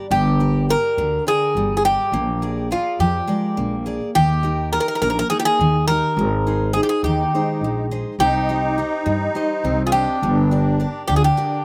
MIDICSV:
0, 0, Header, 1, 5, 480
1, 0, Start_track
1, 0, Tempo, 577478
1, 92, Time_signature, 7, 3, 24, 8
1, 9682, End_track
2, 0, Start_track
2, 0, Title_t, "Bouzouki"
2, 0, Program_c, 0, 25
2, 95, Note_on_c, 0, 67, 95
2, 540, Note_off_c, 0, 67, 0
2, 585, Note_on_c, 0, 70, 98
2, 1025, Note_off_c, 0, 70, 0
2, 1064, Note_on_c, 0, 68, 102
2, 1450, Note_off_c, 0, 68, 0
2, 1471, Note_on_c, 0, 68, 73
2, 1530, Note_off_c, 0, 68, 0
2, 1538, Note_on_c, 0, 67, 98
2, 2221, Note_off_c, 0, 67, 0
2, 2261, Note_on_c, 0, 65, 79
2, 2479, Note_off_c, 0, 65, 0
2, 2495, Note_on_c, 0, 67, 74
2, 3179, Note_off_c, 0, 67, 0
2, 3451, Note_on_c, 0, 67, 98
2, 3898, Note_off_c, 0, 67, 0
2, 3928, Note_on_c, 0, 70, 98
2, 3983, Note_off_c, 0, 70, 0
2, 3993, Note_on_c, 0, 70, 78
2, 4048, Note_off_c, 0, 70, 0
2, 4058, Note_on_c, 0, 70, 76
2, 4107, Note_off_c, 0, 70, 0
2, 4117, Note_on_c, 0, 70, 75
2, 4160, Note_off_c, 0, 70, 0
2, 4170, Note_on_c, 0, 70, 92
2, 4228, Note_off_c, 0, 70, 0
2, 4238, Note_on_c, 0, 70, 74
2, 4305, Note_off_c, 0, 70, 0
2, 4314, Note_on_c, 0, 70, 96
2, 4374, Note_off_c, 0, 70, 0
2, 4404, Note_on_c, 0, 68, 99
2, 4468, Note_off_c, 0, 68, 0
2, 4485, Note_on_c, 0, 67, 86
2, 4529, Note_off_c, 0, 67, 0
2, 4533, Note_on_c, 0, 68, 112
2, 4880, Note_off_c, 0, 68, 0
2, 4884, Note_on_c, 0, 70, 103
2, 5575, Note_off_c, 0, 70, 0
2, 5597, Note_on_c, 0, 68, 88
2, 5658, Note_off_c, 0, 68, 0
2, 5678, Note_on_c, 0, 67, 74
2, 5724, Note_off_c, 0, 67, 0
2, 5728, Note_on_c, 0, 68, 85
2, 5843, Note_off_c, 0, 68, 0
2, 5852, Note_on_c, 0, 67, 70
2, 6540, Note_off_c, 0, 67, 0
2, 6816, Note_on_c, 0, 67, 97
2, 8197, Note_off_c, 0, 67, 0
2, 8200, Note_on_c, 0, 68, 76
2, 8243, Note_off_c, 0, 68, 0
2, 8246, Note_on_c, 0, 67, 102
2, 9178, Note_off_c, 0, 67, 0
2, 9206, Note_on_c, 0, 67, 87
2, 9265, Note_off_c, 0, 67, 0
2, 9279, Note_on_c, 0, 68, 77
2, 9335, Note_off_c, 0, 68, 0
2, 9346, Note_on_c, 0, 67, 81
2, 9682, Note_off_c, 0, 67, 0
2, 9682, End_track
3, 0, Start_track
3, 0, Title_t, "Steel-string acoustic guitar"
3, 0, Program_c, 1, 25
3, 95, Note_on_c, 1, 55, 73
3, 333, Note_on_c, 1, 67, 51
3, 337, Note_on_c, 1, 70, 39
3, 339, Note_on_c, 1, 74, 52
3, 559, Note_off_c, 1, 55, 0
3, 569, Note_off_c, 1, 67, 0
3, 569, Note_off_c, 1, 74, 0
3, 570, Note_off_c, 1, 70, 0
3, 575, Note_on_c, 1, 67, 54
3, 583, Note_on_c, 1, 70, 41
3, 586, Note_on_c, 1, 74, 48
3, 816, Note_on_c, 1, 50, 76
3, 960, Note_off_c, 1, 67, 0
3, 960, Note_off_c, 1, 70, 0
3, 960, Note_off_c, 1, 74, 0
3, 1052, Note_on_c, 1, 79, 49
3, 1055, Note_on_c, 1, 70, 49
3, 1061, Note_on_c, 1, 74, 53
3, 1279, Note_off_c, 1, 50, 0
3, 1302, Note_on_c, 1, 55, 70
3, 1436, Note_off_c, 1, 79, 0
3, 1438, Note_off_c, 1, 70, 0
3, 1439, Note_off_c, 1, 74, 0
3, 1537, Note_on_c, 1, 67, 51
3, 1543, Note_on_c, 1, 70, 43
3, 1544, Note_on_c, 1, 74, 60
3, 1727, Note_off_c, 1, 67, 0
3, 1728, Note_off_c, 1, 70, 0
3, 1731, Note_off_c, 1, 74, 0
3, 1762, Note_off_c, 1, 55, 0
3, 1774, Note_on_c, 1, 58, 81
3, 2012, Note_on_c, 1, 68, 50
3, 2017, Note_on_c, 1, 70, 41
3, 2018, Note_on_c, 1, 74, 60
3, 2238, Note_off_c, 1, 58, 0
3, 2242, Note_off_c, 1, 68, 0
3, 2243, Note_off_c, 1, 70, 0
3, 2247, Note_off_c, 1, 74, 0
3, 2250, Note_on_c, 1, 68, 46
3, 2256, Note_on_c, 1, 70, 41
3, 2257, Note_on_c, 1, 74, 57
3, 2494, Note_on_c, 1, 53, 74
3, 2635, Note_off_c, 1, 68, 0
3, 2636, Note_off_c, 1, 70, 0
3, 2639, Note_off_c, 1, 74, 0
3, 2722, Note_on_c, 1, 56, 61
3, 2727, Note_on_c, 1, 70, 53
3, 2734, Note_on_c, 1, 74, 54
3, 2958, Note_off_c, 1, 53, 0
3, 2969, Note_on_c, 1, 58, 75
3, 3110, Note_off_c, 1, 56, 0
3, 3113, Note_off_c, 1, 70, 0
3, 3114, Note_off_c, 1, 74, 0
3, 3207, Note_on_c, 1, 68, 59
3, 3214, Note_on_c, 1, 70, 49
3, 3216, Note_on_c, 1, 74, 64
3, 3401, Note_off_c, 1, 68, 0
3, 3403, Note_off_c, 1, 70, 0
3, 3406, Note_off_c, 1, 74, 0
3, 3436, Note_off_c, 1, 58, 0
3, 3452, Note_on_c, 1, 51, 85
3, 3683, Note_on_c, 1, 63, 48
3, 3690, Note_on_c, 1, 67, 45
3, 3696, Note_on_c, 1, 70, 60
3, 3917, Note_off_c, 1, 51, 0
3, 3926, Note_off_c, 1, 63, 0
3, 3926, Note_off_c, 1, 67, 0
3, 3930, Note_off_c, 1, 70, 0
3, 3934, Note_on_c, 1, 63, 48
3, 3940, Note_on_c, 1, 67, 42
3, 3940, Note_on_c, 1, 70, 54
3, 4182, Note_on_c, 1, 58, 80
3, 4318, Note_off_c, 1, 63, 0
3, 4318, Note_off_c, 1, 67, 0
3, 4321, Note_off_c, 1, 70, 0
3, 4412, Note_on_c, 1, 63, 61
3, 4416, Note_on_c, 1, 79, 51
3, 4421, Note_on_c, 1, 70, 61
3, 4643, Note_off_c, 1, 58, 0
3, 4659, Note_on_c, 1, 51, 73
3, 4796, Note_off_c, 1, 63, 0
3, 4799, Note_off_c, 1, 79, 0
3, 4801, Note_off_c, 1, 70, 0
3, 4902, Note_on_c, 1, 63, 59
3, 4906, Note_on_c, 1, 67, 57
3, 4910, Note_on_c, 1, 70, 61
3, 5090, Note_off_c, 1, 63, 0
3, 5093, Note_off_c, 1, 67, 0
3, 5095, Note_off_c, 1, 70, 0
3, 5122, Note_off_c, 1, 51, 0
3, 5142, Note_on_c, 1, 56, 75
3, 5375, Note_on_c, 1, 63, 50
3, 5378, Note_on_c, 1, 68, 49
3, 5386, Note_on_c, 1, 72, 47
3, 5603, Note_off_c, 1, 56, 0
3, 5610, Note_off_c, 1, 63, 0
3, 5611, Note_off_c, 1, 68, 0
3, 5613, Note_off_c, 1, 72, 0
3, 5620, Note_on_c, 1, 72, 49
3, 5623, Note_on_c, 1, 68, 43
3, 5626, Note_on_c, 1, 63, 41
3, 5865, Note_on_c, 1, 51, 72
3, 6001, Note_off_c, 1, 63, 0
3, 6002, Note_off_c, 1, 68, 0
3, 6003, Note_off_c, 1, 72, 0
3, 6107, Note_on_c, 1, 72, 62
3, 6110, Note_on_c, 1, 63, 49
3, 6116, Note_on_c, 1, 56, 44
3, 6325, Note_off_c, 1, 51, 0
3, 6343, Note_off_c, 1, 56, 0
3, 6353, Note_on_c, 1, 56, 61
3, 6486, Note_off_c, 1, 63, 0
3, 6487, Note_off_c, 1, 72, 0
3, 6578, Note_on_c, 1, 63, 56
3, 6584, Note_on_c, 1, 68, 46
3, 6585, Note_on_c, 1, 72, 48
3, 6769, Note_off_c, 1, 63, 0
3, 6771, Note_off_c, 1, 72, 0
3, 6772, Note_off_c, 1, 68, 0
3, 6809, Note_off_c, 1, 56, 0
3, 6817, Note_on_c, 1, 60, 69
3, 7056, Note_on_c, 1, 67, 47
3, 7060, Note_on_c, 1, 72, 44
3, 7065, Note_on_c, 1, 75, 50
3, 7282, Note_off_c, 1, 60, 0
3, 7285, Note_off_c, 1, 67, 0
3, 7289, Note_off_c, 1, 72, 0
3, 7291, Note_off_c, 1, 75, 0
3, 7295, Note_on_c, 1, 67, 45
3, 7298, Note_on_c, 1, 72, 45
3, 7306, Note_on_c, 1, 75, 50
3, 7529, Note_on_c, 1, 55, 72
3, 7679, Note_off_c, 1, 67, 0
3, 7682, Note_off_c, 1, 72, 0
3, 7683, Note_off_c, 1, 75, 0
3, 7771, Note_on_c, 1, 67, 53
3, 7775, Note_on_c, 1, 72, 55
3, 7783, Note_on_c, 1, 75, 54
3, 7998, Note_off_c, 1, 55, 0
3, 8018, Note_on_c, 1, 60, 72
3, 8157, Note_off_c, 1, 67, 0
3, 8161, Note_off_c, 1, 72, 0
3, 8162, Note_off_c, 1, 75, 0
3, 8253, Note_on_c, 1, 67, 56
3, 8259, Note_on_c, 1, 72, 48
3, 8263, Note_on_c, 1, 75, 56
3, 8447, Note_off_c, 1, 67, 0
3, 8449, Note_off_c, 1, 72, 0
3, 8449, Note_off_c, 1, 75, 0
3, 8482, Note_off_c, 1, 60, 0
3, 8504, Note_on_c, 1, 55, 74
3, 8738, Note_on_c, 1, 67, 48
3, 8745, Note_on_c, 1, 70, 44
3, 8747, Note_on_c, 1, 74, 58
3, 8966, Note_off_c, 1, 55, 0
3, 8966, Note_off_c, 1, 67, 0
3, 8968, Note_off_c, 1, 70, 0
3, 8973, Note_off_c, 1, 74, 0
3, 8975, Note_on_c, 1, 67, 45
3, 8981, Note_on_c, 1, 70, 37
3, 8983, Note_on_c, 1, 74, 55
3, 9221, Note_on_c, 1, 50, 78
3, 9360, Note_off_c, 1, 67, 0
3, 9362, Note_off_c, 1, 70, 0
3, 9364, Note_off_c, 1, 74, 0
3, 9453, Note_on_c, 1, 67, 58
3, 9459, Note_on_c, 1, 70, 47
3, 9460, Note_on_c, 1, 74, 61
3, 9682, Note_off_c, 1, 50, 0
3, 9682, Note_off_c, 1, 67, 0
3, 9682, Note_off_c, 1, 70, 0
3, 9682, Note_off_c, 1, 74, 0
3, 9682, End_track
4, 0, Start_track
4, 0, Title_t, "Accordion"
4, 0, Program_c, 2, 21
4, 5838, Note_on_c, 2, 63, 74
4, 6533, Note_off_c, 2, 63, 0
4, 6819, Note_on_c, 2, 63, 113
4, 8166, Note_off_c, 2, 63, 0
4, 8190, Note_on_c, 2, 65, 59
4, 8222, Note_on_c, 2, 62, 88
4, 8247, Note_off_c, 2, 65, 0
4, 9166, Note_off_c, 2, 62, 0
4, 9192, Note_on_c, 2, 62, 72
4, 9258, Note_off_c, 2, 62, 0
4, 9270, Note_on_c, 2, 65, 64
4, 9312, Note_on_c, 2, 62, 77
4, 9326, Note_off_c, 2, 65, 0
4, 9682, Note_off_c, 2, 62, 0
4, 9682, End_track
5, 0, Start_track
5, 0, Title_t, "Upright bass"
5, 0, Program_c, 3, 32
5, 88, Note_on_c, 3, 31, 110
5, 593, Note_off_c, 3, 31, 0
5, 810, Note_on_c, 3, 38, 91
5, 978, Note_off_c, 3, 38, 0
5, 1288, Note_on_c, 3, 31, 88
5, 1625, Note_off_c, 3, 31, 0
5, 1763, Note_on_c, 3, 34, 104
5, 2270, Note_off_c, 3, 34, 0
5, 2488, Note_on_c, 3, 41, 97
5, 2657, Note_off_c, 3, 41, 0
5, 2976, Note_on_c, 3, 34, 92
5, 3310, Note_off_c, 3, 34, 0
5, 3458, Note_on_c, 3, 39, 112
5, 3960, Note_off_c, 3, 39, 0
5, 4169, Note_on_c, 3, 34, 101
5, 4338, Note_off_c, 3, 34, 0
5, 4650, Note_on_c, 3, 39, 100
5, 4987, Note_off_c, 3, 39, 0
5, 5126, Note_on_c, 3, 32, 106
5, 5633, Note_off_c, 3, 32, 0
5, 5843, Note_on_c, 3, 39, 94
5, 6015, Note_off_c, 3, 39, 0
5, 6326, Note_on_c, 3, 34, 76
5, 6665, Note_off_c, 3, 34, 0
5, 6805, Note_on_c, 3, 36, 97
5, 7312, Note_off_c, 3, 36, 0
5, 7531, Note_on_c, 3, 43, 87
5, 7700, Note_off_c, 3, 43, 0
5, 8011, Note_on_c, 3, 36, 97
5, 8349, Note_off_c, 3, 36, 0
5, 8499, Note_on_c, 3, 31, 108
5, 9002, Note_off_c, 3, 31, 0
5, 9218, Note_on_c, 3, 38, 90
5, 9385, Note_off_c, 3, 38, 0
5, 9682, End_track
0, 0, End_of_file